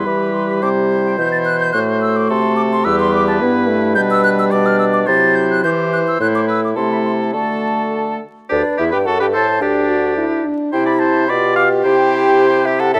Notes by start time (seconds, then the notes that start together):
Already playing: G3 B4
0.06 E3 G4 B5
0.33 C6
0.49 B5
0.61 C3 E4 C5 D6
0.90 C6
1.06 G5
1.18 B2 E3 E4 G6
1.32 A6
1.45 F#6
1.60 G6
1.72 A2 A3 F#4 F#6
2.01 E6
2.16 D6
2.29 C3 A4 C6
2.56 D6
2.73 C6
2.84 E2 G3 G4 B4 E6
3.00 C6
3.12 D6
3.28 A5
3.41 G2 B3 E4
3.68 A3
3.95 B2 G3 D4 B4 G6
4.11 E6
4.24 F#6
4.39 E6
4.51 B2 D4 D5 D6
4.66 F6
4.79 E6
4.93 D6
5.06 C3 F#3 E4 C5 A6
5.35 G6
5.50 F#6
5.63 E3 G4 C5 G6
5.93 F#6
6.08 E6
6.20 A2 A3 E4 C5 F#6
6.35 D6
6.48 B4 E6
6.64 D6
6.76 C3 A3 E4 A4 C6
6.92 B5
7.06 C6
7.33 D3 A3 F#4 A4 A5
8.49 D2 D4 G4 B4 D5
8.77 E2 E4 G4 E5
8.91 G2 G4 B4 G5
9.06 F#2 F#4 A4 F#5
9.20 G2 G4 B4 G5
9.33 A2 A4 C5 A5
9.61 D2 D4 G4 D5
9.89 F#4
10.17 E4
10.45 D4
10.72 C3 E4 C5 G5
10.86 D5 B5
10.99 C5 A5
11.27 B2 F4 G4 D5 B5
11.56 F5 D6
11.83 C3 E4 C5 G5
12.65 G4 E5
12.80 A4 F#5
12.94 A2 A4 E5